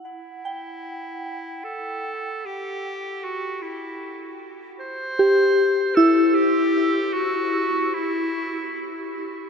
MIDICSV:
0, 0, Header, 1, 3, 480
1, 0, Start_track
1, 0, Tempo, 500000
1, 9115, End_track
2, 0, Start_track
2, 0, Title_t, "Synth bell"
2, 0, Program_c, 0, 98
2, 0, Control_c, 0, 64, 127
2, 0, Note_on_c, 0, 78, 74
2, 47, Control_c, 0, 64, 0
2, 236, Control_c, 0, 64, 127
2, 433, Note_on_c, 0, 79, 65
2, 1529, Note_off_c, 0, 78, 0
2, 2672, Note_off_c, 0, 79, 0
2, 4621, Control_c, 0, 64, 0
2, 4769, Control_c, 0, 64, 127
2, 4984, Note_on_c, 0, 67, 65
2, 5730, Note_on_c, 0, 88, 75
2, 5732, Note_on_c, 0, 64, 67
2, 7199, Note_off_c, 0, 67, 0
2, 7961, Note_off_c, 0, 88, 0
2, 7962, Note_off_c, 0, 64, 0
2, 9115, End_track
3, 0, Start_track
3, 0, Title_t, "Clarinet"
3, 0, Program_c, 1, 71
3, 39, Note_on_c, 1, 64, 87
3, 1578, Note_on_c, 1, 69, 88
3, 1592, Note_off_c, 1, 64, 0
3, 2359, Note_on_c, 1, 67, 98
3, 2373, Note_off_c, 1, 69, 0
3, 3112, Note_on_c, 1, 66, 88
3, 3126, Note_off_c, 1, 67, 0
3, 3477, Note_on_c, 1, 64, 73
3, 3491, Note_off_c, 1, 66, 0
3, 4233, Note_off_c, 1, 64, 0
3, 4605, Note_on_c, 1, 72, 106
3, 5714, Note_on_c, 1, 69, 83
3, 5729, Note_off_c, 1, 72, 0
3, 6093, Note_on_c, 1, 67, 90
3, 6107, Note_off_c, 1, 69, 0
3, 6849, Note_on_c, 1, 66, 86
3, 6863, Note_off_c, 1, 67, 0
3, 7622, Note_on_c, 1, 64, 81
3, 7637, Note_off_c, 1, 66, 0
3, 8782, Note_off_c, 1, 64, 0
3, 9115, End_track
0, 0, End_of_file